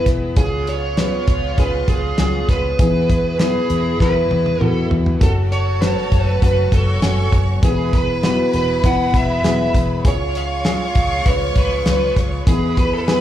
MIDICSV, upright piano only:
0, 0, Header, 1, 2, 480
1, 0, Start_track
1, 0, Tempo, 605449
1, 291, Time_signature, 4, 2, 24, 8
1, 10471, End_track
2, 0, Start_track
2, 0, Title_t, "Upright piano"
2, 0, Program_c, 0, 0
2, 0, Control_c, 0, 64, 127
2, 0, Note_on_c, 0, 59, 76
2, 0, Note_on_c, 0, 64, 77
2, 0, Note_on_c, 0, 68, 83
2, 0, Note_on_c, 0, 71, 83
2, 258, Note_off_c, 0, 59, 0
2, 258, Note_off_c, 0, 71, 0
2, 259, Note_off_c, 0, 64, 0
2, 290, Note_on_c, 0, 61, 72
2, 291, Note_off_c, 0, 68, 0
2, 291, Note_on_c, 0, 65, 70
2, 291, Note_on_c, 0, 68, 80
2, 292, Note_on_c, 0, 49, 63
2, 301, Control_c, 0, 64, 0
2, 456, Control_c, 0, 64, 127
2, 737, Note_off_c, 0, 61, 0
2, 738, Note_off_c, 0, 65, 0
2, 738, Note_off_c, 0, 68, 0
2, 773, Note_on_c, 0, 61, 80
2, 775, Note_on_c, 0, 65, 70
2, 776, Note_on_c, 0, 71, 85
2, 980, Note_off_c, 0, 49, 0
2, 1219, Note_off_c, 0, 61, 0
2, 1220, Note_off_c, 0, 65, 0
2, 1221, Note_off_c, 0, 71, 0
2, 1258, Note_on_c, 0, 61, 78
2, 1259, Note_on_c, 0, 65, 74
2, 1259, Note_on_c, 0, 68, 81
2, 1702, Note_off_c, 0, 61, 0
2, 1702, Note_off_c, 0, 65, 0
2, 1702, Note_off_c, 0, 68, 0
2, 1736, Note_on_c, 0, 61, 76
2, 1736, Note_on_c, 0, 65, 75
2, 1738, Note_on_c, 0, 68, 86
2, 2180, Note_off_c, 0, 65, 0
2, 2181, Note_off_c, 0, 61, 0
2, 2181, Note_off_c, 0, 68, 0
2, 2216, Note_on_c, 0, 52, 63
2, 2216, Note_on_c, 0, 64, 66
2, 2216, Note_on_c, 0, 68, 76
2, 2217, Note_on_c, 0, 59, 68
2, 2221, Control_c, 0, 64, 0
2, 2354, Control_c, 0, 64, 127
2, 2660, Note_off_c, 0, 68, 0
2, 2661, Note_off_c, 0, 59, 0
2, 2661, Note_off_c, 0, 64, 0
2, 2694, Note_on_c, 0, 59, 81
2, 2695, Note_on_c, 0, 64, 70
2, 2695, Note_on_c, 0, 71, 86
2, 2902, Note_off_c, 0, 52, 0
2, 3139, Note_off_c, 0, 59, 0
2, 3140, Note_off_c, 0, 64, 0
2, 3140, Note_off_c, 0, 71, 0
2, 3172, Note_on_c, 0, 59, 73
2, 3173, Note_on_c, 0, 64, 71
2, 3173, Note_on_c, 0, 71, 87
2, 3618, Note_off_c, 0, 59, 0
2, 3619, Note_off_c, 0, 64, 0
2, 3619, Note_off_c, 0, 71, 0
2, 3647, Note_on_c, 0, 59, 69
2, 3649, Note_on_c, 0, 64, 72
2, 3651, Note_on_c, 0, 66, 79
2, 4096, Note_off_c, 0, 59, 0
2, 4097, Note_off_c, 0, 64, 0
2, 4097, Note_off_c, 0, 66, 0
2, 4126, Note_on_c, 0, 61, 68
2, 4127, Note_on_c, 0, 66, 66
2, 4128, Note_on_c, 0, 69, 70
2, 4140, Control_c, 0, 64, 0
2, 4279, Control_c, 0, 64, 127
2, 4575, Note_off_c, 0, 61, 0
2, 4575, Note_off_c, 0, 66, 0
2, 4576, Note_off_c, 0, 69, 0
2, 4605, Note_on_c, 0, 61, 71
2, 4606, Note_on_c, 0, 66, 65
2, 4606, Note_on_c, 0, 71, 89
2, 5054, Note_off_c, 0, 61, 0
2, 5055, Note_off_c, 0, 66, 0
2, 5055, Note_off_c, 0, 71, 0
2, 5090, Note_on_c, 0, 61, 70
2, 5090, Note_on_c, 0, 66, 67
2, 5090, Note_on_c, 0, 71, 85
2, 5536, Note_off_c, 0, 61, 0
2, 5536, Note_off_c, 0, 66, 0
2, 5537, Note_off_c, 0, 71, 0
2, 5570, Note_on_c, 0, 61, 82
2, 5570, Note_on_c, 0, 66, 70
2, 5570, Note_on_c, 0, 80, 86
2, 6016, Note_off_c, 0, 61, 0
2, 6016, Note_off_c, 0, 66, 0
2, 6016, Note_off_c, 0, 80, 0
2, 6043, Note_on_c, 0, 64, 65
2, 6044, Note_on_c, 0, 52, 61
2, 6044, Note_on_c, 0, 68, 79
2, 6046, Note_on_c, 0, 59, 72
2, 6058, Control_c, 0, 64, 0
2, 6220, Control_c, 0, 64, 127
2, 6493, Note_off_c, 0, 64, 0
2, 6493, Note_off_c, 0, 68, 0
2, 6494, Note_off_c, 0, 59, 0
2, 6526, Note_on_c, 0, 59, 77
2, 6529, Note_on_c, 0, 64, 69
2, 6529, Note_on_c, 0, 66, 87
2, 6734, Note_off_c, 0, 52, 0
2, 6974, Note_off_c, 0, 59, 0
2, 6975, Note_off_c, 0, 64, 0
2, 6975, Note_off_c, 0, 66, 0
2, 7004, Note_on_c, 0, 64, 68
2, 7004, Note_on_c, 0, 71, 82
2, 7005, Note_on_c, 0, 59, 74
2, 7452, Note_off_c, 0, 64, 0
2, 7452, Note_off_c, 0, 71, 0
2, 7453, Note_off_c, 0, 59, 0
2, 7486, Note_on_c, 0, 64, 69
2, 7487, Note_on_c, 0, 68, 90
2, 7488, Note_on_c, 0, 59, 78
2, 7933, Note_off_c, 0, 64, 0
2, 7934, Note_off_c, 0, 59, 0
2, 7934, Note_off_c, 0, 68, 0
2, 7963, Note_on_c, 0, 61, 72
2, 7965, Note_on_c, 0, 49, 64
2, 7965, Note_on_c, 0, 68, 83
2, 7967, Note_on_c, 0, 65, 70
2, 7979, Control_c, 0, 64, 0
2, 8122, Control_c, 0, 64, 127
2, 8411, Note_off_c, 0, 61, 0
2, 8412, Note_off_c, 0, 68, 0
2, 8413, Note_off_c, 0, 65, 0
2, 8445, Note_on_c, 0, 68, 85
2, 8446, Note_on_c, 0, 61, 73
2, 8446, Note_on_c, 0, 65, 73
2, 8654, Note_off_c, 0, 49, 0
2, 8893, Note_off_c, 0, 61, 0
2, 8893, Note_off_c, 0, 65, 0
2, 8893, Note_off_c, 0, 68, 0
2, 8926, Note_on_c, 0, 61, 73
2, 8927, Note_on_c, 0, 65, 73
2, 8927, Note_on_c, 0, 71, 91
2, 9373, Note_off_c, 0, 61, 0
2, 9373, Note_off_c, 0, 71, 0
2, 9374, Note_off_c, 0, 65, 0
2, 9407, Note_on_c, 0, 61, 76
2, 9409, Note_on_c, 0, 65, 72
2, 9409, Note_on_c, 0, 71, 92
2, 9853, Note_off_c, 0, 61, 0
2, 9854, Note_off_c, 0, 65, 0
2, 9854, Note_off_c, 0, 71, 0
2, 9882, Note_on_c, 0, 52, 61
2, 9882, Note_on_c, 0, 59, 71
2, 9884, Note_on_c, 0, 64, 66
2, 9885, Note_on_c, 0, 68, 75
2, 9895, Control_c, 0, 64, 0
2, 10051, Control_c, 0, 64, 127
2, 10331, Note_off_c, 0, 59, 0
2, 10332, Note_off_c, 0, 64, 0
2, 10332, Note_off_c, 0, 68, 0
2, 10365, Note_on_c, 0, 59, 80
2, 10367, Note_on_c, 0, 64, 68
2, 10367, Note_on_c, 0, 68, 88
2, 10471, Note_off_c, 0, 52, 0
2, 10471, Note_off_c, 0, 59, 0
2, 10471, Note_off_c, 0, 64, 0
2, 10471, Note_off_c, 0, 68, 0
2, 10471, End_track
0, 0, End_of_file